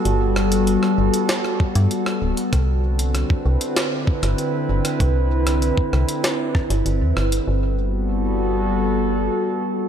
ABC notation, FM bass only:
X:1
M:4/4
L:1/16
Q:1/4=97
K:G
V:1 name="FM bass" clef=bass
G,,,4- G,,, z G,,, z4 G,, z2 D,,, z | C,,4- C,, z C,, z4 G,,, z2 G,,, z | C,,4- C,, z C,, z4 G,,, G,,, E,, G,,,2 | G,,,12 z4 |]